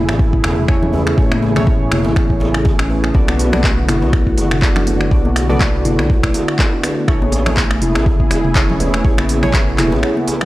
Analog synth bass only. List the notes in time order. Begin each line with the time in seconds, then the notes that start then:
0.08 A1
0.44 E1
1.18 A1
1.91 E1
2.05 A1
2.16 A1
3.15 B1
3.88 F#1
4.02 B1
4.38 F#1
5.11 B1
5.85 F#1
5.98 B1
7.08 A1
7.81 E1
7.95 A1
8.31 E1
9.05 A1
9.78 E1
9.92 A1